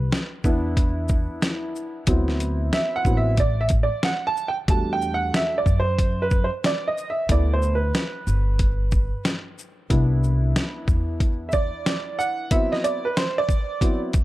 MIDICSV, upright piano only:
0, 0, Header, 1, 2, 480
1, 0, Start_track
1, 0, Tempo, 652174
1, 1527, Time_signature, 4, 2, 24, 8
1, 10483, End_track
2, 0, Start_track
2, 0, Title_t, "Upright piano"
2, 0, Program_c, 0, 0
2, 0, Note_on_c, 0, 71, 81
2, 211, Note_off_c, 0, 71, 0
2, 326, Note_on_c, 0, 59, 63
2, 330, Note_on_c, 0, 62, 54
2, 335, Note_on_c, 0, 64, 67
2, 1497, Note_off_c, 0, 59, 0
2, 1499, Note_off_c, 0, 62, 0
2, 1502, Note_off_c, 0, 64, 0
2, 1528, Note_on_c, 0, 54, 51
2, 1533, Note_on_c, 0, 59, 49
2, 1537, Note_on_c, 0, 60, 50
2, 1537, Note_on_c, 0, 64, 58
2, 2014, Note_on_c, 0, 76, 98
2, 2175, Note_off_c, 0, 76, 0
2, 2177, Note_on_c, 0, 78, 97
2, 2241, Note_off_c, 0, 54, 0
2, 2243, Note_off_c, 0, 59, 0
2, 2246, Note_off_c, 0, 60, 0
2, 2248, Note_off_c, 0, 64, 0
2, 2252, Note_on_c, 0, 54, 53
2, 2254, Note_on_c, 0, 59, 51
2, 2257, Note_on_c, 0, 60, 45
2, 2259, Note_on_c, 0, 64, 59
2, 2321, Note_off_c, 0, 78, 0
2, 2335, Note_on_c, 0, 76, 93
2, 2466, Note_off_c, 0, 54, 0
2, 2467, Note_off_c, 0, 59, 0
2, 2469, Note_off_c, 0, 60, 0
2, 2470, Note_off_c, 0, 64, 0
2, 2496, Note_off_c, 0, 76, 0
2, 2502, Note_on_c, 0, 74, 87
2, 2655, Note_on_c, 0, 76, 87
2, 2659, Note_off_c, 0, 74, 0
2, 2691, Note_off_c, 0, 76, 0
2, 2821, Note_on_c, 0, 74, 78
2, 2979, Note_off_c, 0, 74, 0
2, 2979, Note_on_c, 0, 78, 97
2, 3122, Note_off_c, 0, 78, 0
2, 3142, Note_on_c, 0, 81, 101
2, 3299, Note_off_c, 0, 81, 0
2, 3300, Note_on_c, 0, 79, 94
2, 3337, Note_off_c, 0, 79, 0
2, 3447, Note_on_c, 0, 55, 49
2, 3449, Note_on_c, 0, 57, 50
2, 3452, Note_on_c, 0, 62, 45
2, 3457, Note_on_c, 0, 66, 53
2, 3460, Note_on_c, 0, 81, 90
2, 3618, Note_off_c, 0, 81, 0
2, 3626, Note_on_c, 0, 79, 98
2, 3781, Note_off_c, 0, 79, 0
2, 3785, Note_on_c, 0, 78, 95
2, 3941, Note_off_c, 0, 78, 0
2, 3945, Note_on_c, 0, 76, 91
2, 4085, Note_off_c, 0, 76, 0
2, 4106, Note_on_c, 0, 74, 90
2, 4138, Note_off_c, 0, 55, 0
2, 4139, Note_off_c, 0, 57, 0
2, 4140, Note_off_c, 0, 62, 0
2, 4143, Note_off_c, 0, 66, 0
2, 4261, Note_off_c, 0, 74, 0
2, 4266, Note_on_c, 0, 72, 94
2, 4578, Note_on_c, 0, 71, 82
2, 4586, Note_off_c, 0, 72, 0
2, 4737, Note_off_c, 0, 71, 0
2, 4741, Note_on_c, 0, 72, 79
2, 4778, Note_off_c, 0, 72, 0
2, 4901, Note_on_c, 0, 74, 89
2, 5044, Note_off_c, 0, 74, 0
2, 5060, Note_on_c, 0, 75, 91
2, 5218, Note_off_c, 0, 75, 0
2, 5225, Note_on_c, 0, 76, 85
2, 5371, Note_on_c, 0, 57, 52
2, 5373, Note_on_c, 0, 59, 48
2, 5378, Note_on_c, 0, 64, 57
2, 5381, Note_off_c, 0, 76, 0
2, 5385, Note_on_c, 0, 74, 83
2, 5541, Note_off_c, 0, 74, 0
2, 5546, Note_on_c, 0, 72, 81
2, 5686, Note_off_c, 0, 72, 0
2, 5705, Note_on_c, 0, 71, 72
2, 5714, Note_off_c, 0, 57, 0
2, 5715, Note_off_c, 0, 59, 0
2, 5718, Note_off_c, 0, 64, 0
2, 6867, Note_off_c, 0, 71, 0
2, 7284, Note_on_c, 0, 59, 51
2, 7289, Note_on_c, 0, 62, 49
2, 7293, Note_on_c, 0, 64, 59
2, 8455, Note_on_c, 0, 76, 67
2, 8489, Note_on_c, 0, 74, 100
2, 8490, Note_off_c, 0, 76, 0
2, 8969, Note_on_c, 0, 78, 105
2, 8982, Note_off_c, 0, 74, 0
2, 9176, Note_off_c, 0, 59, 0
2, 9179, Note_off_c, 0, 62, 0
2, 9180, Note_off_c, 0, 64, 0
2, 9208, Note_on_c, 0, 54, 52
2, 9209, Note_on_c, 0, 59, 51
2, 9210, Note_on_c, 0, 76, 93
2, 9212, Note_on_c, 0, 60, 48
2, 9214, Note_on_c, 0, 64, 64
2, 9215, Note_off_c, 0, 78, 0
2, 9352, Note_off_c, 0, 76, 0
2, 9362, Note_on_c, 0, 75, 92
2, 9442, Note_off_c, 0, 75, 0
2, 9451, Note_on_c, 0, 74, 97
2, 9552, Note_off_c, 0, 54, 0
2, 9553, Note_off_c, 0, 59, 0
2, 9554, Note_off_c, 0, 60, 0
2, 9555, Note_off_c, 0, 64, 0
2, 9604, Note_on_c, 0, 71, 84
2, 9607, Note_off_c, 0, 74, 0
2, 9683, Note_off_c, 0, 71, 0
2, 9693, Note_on_c, 0, 72, 88
2, 9848, Note_off_c, 0, 72, 0
2, 9849, Note_on_c, 0, 74, 103
2, 10164, Note_on_c, 0, 54, 48
2, 10167, Note_on_c, 0, 59, 46
2, 10170, Note_on_c, 0, 60, 48
2, 10171, Note_on_c, 0, 64, 55
2, 10296, Note_off_c, 0, 74, 0
2, 10382, Note_off_c, 0, 54, 0
2, 10383, Note_off_c, 0, 59, 0
2, 10385, Note_off_c, 0, 60, 0
2, 10385, Note_off_c, 0, 64, 0
2, 10483, End_track
0, 0, End_of_file